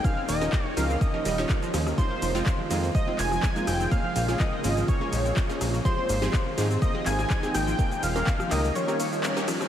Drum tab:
RD |x-x-x-x-x-x-x-x-|x-x---x-x-x-x-x-|x-x-x-x-x-x-x-x-|x-x-x-x-x-x-x-x-|
HH |--o---o---o---o-|--o---o---o---o-|--o---o---o---o-|--o---o---o---o-|
SH |x-xxx-xxx-xxxxxx|x-xxx-xxx-xxxxxx|x-xxx-xxx-xxxxxx|x-xxx-xxx-xxxxxx|
CP |----x-------x---|----x-----x-x---|----x-------x---|----x-----x-x---|
SD |--------------rr|-----------r--r-|--------------r-|-----------r--r-|
BD |o---o---o---o---|o---o---o---o---|o---o---o---o---|o---o---o---o---|

RD |x-x-x-x-x-x-x-x-|
HH |--o---o---o---o-|
SH |xxxxxxxxxxxxxxxx|
CP |----x-x-----x---|
SD |-----r--------rr|
BD |o---o-----------|